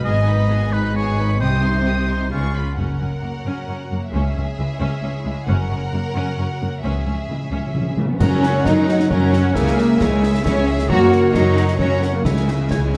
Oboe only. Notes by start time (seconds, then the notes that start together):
0.05 D#5
0.73 B4
0.96 C#5
1.40 C5
2.31 F4
8.19 F#5
9.10 F#5
9.54 E5
9.99 E5
10.45 E5
10.89 C#5
11.79 C#5
12.25 E5
12.71 G#5
12.93 E5